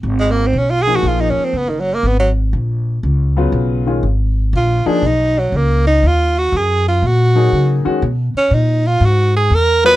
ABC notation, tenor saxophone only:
X:1
M:4/4
L:1/16
Q:"Swing" 1/4=120
K:G#dor
V:1 name="Tenor saxophone"
z G, A, ^B, C E G F E D C B, =B, D, F, A, | B, F, z12 z2 | z4 E2 =D2 ^D2 F,2 A,2 D2 | E2 F2 G2 E2 F6 z2 |
z2 C2 D2 E2 F2 G2 A2 B2 |]